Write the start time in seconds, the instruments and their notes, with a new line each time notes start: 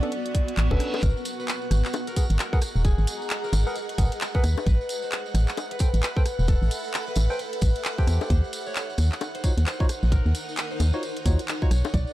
Already playing: ambient pad B3 F#4 C#6, analog synth pad F#5
0.03 tine electric piano B3 C#4 D4 A4, harp D5, closed hi-hat
0.12 closed hi-hat, reverse cymbal
0.26 closed hi-hat
0.35 kick, open hi-hat
0.48 closed hi-hat
0.57 fm bass A1, clap, closed hi-hat
0.71 fm bass F#1, tine electric piano B3 C#4 D4 A4, harp B4, kick, high bongo
0.80 cross-stick, open hi-hat
0.94 high bongo
1.03 fm bass G#1, ambient pad G#4, harp A#4, analog synth pad F#5, kick, closed hi-hat, tambourine
1.17 ambient pad D#5, tambourine
1.25 open hi-hat, tambourine
1.38 harp B4, ambient pad A#5, tambourine
1.48 clap, closed hi-hat, tambourine
1.62 tambourine
1.71 fm bass G#1, cross-stick, open hi-hat, tambourine
1.85 clap, tambourine
1.93 closed hi-hat, tambourine, high bongo
2.07 harp A#4, closed hi-hat, tambourine
2.16 tine electric piano G#4 A#4 B4 F#5, kick, open hi-hat, tambourine
2.30 fm bass G#1, closed hi-hat, tambourine
2.39 harp A#4, clap, closed hi-hat, tambourine
2.53 tine electric piano G#4 A#4 B4 F#5, kick, tambourine
2.61 cross-stick, open hi-hat, tambourine
2.76 fm bass D#1, tambourine
2.85 harp G#4, kick, closed hi-hat, tambourine
2.98 fm bass G#1, tambourine
3.07 open hi-hat, tambourine
3.22 tambourine
3.30 clap, closed hi-hat, tambourine
3.44 harp A#4, tambourine
3.53 fm bass G#1, open hi-hat, tambourine, high bongo
3.67 tine electric piano G#4 A#4 B4 F#5, harp A#4, tambourine
3.76 closed hi-hat, tambourine
3.89 closed hi-hat, tambourine
3.98 fm bass G#1, tine electric piano G#4 A#4 B4 F#5, kick, open hi-hat, tambourine
4.12 closed hi-hat, tambourine
4.21 clap, closed hi-hat, tambourine
4.34 tine electric piano G#4 A#4 B4 F#5, harp B4, kick, tambourine
4.43 fm bass D#2, cross-stick, open hi-hat, tambourine
4.58 tambourine, high bongo
4.66 fm bass A1, ambient pad A4, harp B4, kick, closed hi-hat, tambourine
4.81 ambient pad E5, tambourine
4.89 open hi-hat, tambourine
4.96 ambient pad B5
5.02 harp C5, tambourine
5.12 clap, closed hi-hat, tambourine
5.26 tambourine
5.34 fm bass A1, cross-stick, open hi-hat, tambourine
5.48 clap, tambourine
5.57 closed hi-hat, tambourine, high bongo
5.71 harp B4, closed hi-hat, tambourine
5.79 tine electric piano A4 B4 C5 G5, kick, open hi-hat, tambourine
5.94 fm bass A1, closed hi-hat, tambourine
6.03 harp B4, clap, closed hi-hat, tambourine
6.17 tine electric piano A4 B4 C5 G5, kick, tambourine
6.26 cross-stick, open hi-hat, tambourine
6.39 fm bass E1, tambourine
6.48 harp A4, kick, closed hi-hat, tambourine
6.62 fm bass A1, tambourine
6.71 open hi-hat, tambourine
6.84 tambourine
6.94 clap, closed hi-hat, tambourine
7.07 harp B4, tambourine
7.16 fm bass A1, open hi-hat, tambourine, high bongo
7.30 tine electric piano A4 B4 C5 G5, harp B4, tambourine
7.39 closed hi-hat, tambourine
7.53 closed hi-hat, tambourine
7.61 fm bass A1, kick, open hi-hat, tambourine
7.75 closed hi-hat, tambourine
7.84 clap, closed hi-hat, tambourine
7.98 harp G4, tine electric piano A4 B4 C5 G5, kick, tambourine
8.07 fm bass E2, cross-stick, open hi-hat, tambourine
8.21 tambourine, high bongo
8.30 fm bass D#2, ambient pad D#4, harp C5, kick, closed hi-hat, tambourine
8.36 ambient pad A#4
8.44 tambourine
8.53 open hi-hat, tambourine
8.66 harp C#5, tambourine
8.76 clap, closed hi-hat, tambourine
8.90 tambourine
8.98 fm bass D#2, cross-stick, open hi-hat, tambourine
9.12 clap, tambourine
9.21 closed hi-hat, tambourine, high bongo
9.35 harp C5, closed hi-hat, tambourine
9.44 tine electric piano D#4 F4 F#4 C#5, kick, open hi-hat, tambourine
9.57 fm bass D#2, closed hi-hat, tambourine
9.67 harp C5, clap, closed hi-hat, tambourine
9.80 tine electric piano D#4 F4 F#4 C#5, kick, tambourine
9.89 cross-stick, open hi-hat, tambourine
10.03 fm bass A#1, tambourine
10.12 harp A#4, kick, closed hi-hat, tambourine
10.26 fm bass D#2, tambourine
10.35 open hi-hat, tambourine
10.49 tambourine
10.57 clap, closed hi-hat, tambourine
10.71 harp C5, tambourine
10.80 fm bass D#2, open hi-hat, tambourine, high bongo
10.93 tine electric piano D#4 F4 F#4 C#5, harp C5, tambourine
11.03 closed hi-hat, tambourine
11.16 closed hi-hat, tambourine
11.26 fm bass D#2, tine electric piano D#4 F4 F#4 C#5, kick, open hi-hat, tambourine
11.39 closed hi-hat, tambourine
11.48 clap, closed hi-hat, tambourine
11.62 tine electric piano D#4 F4 F#4 C#5, harp C#5, kick, tambourine
11.71 fm bass B1, ambient pad B3, cross-stick, open hi-hat, tambourine
11.84 tambourine, high bongo
11.91 fm bass B1, harp D5, ambient pad C#6, kick, closed hi-hat, tambourine
12.07 tambourine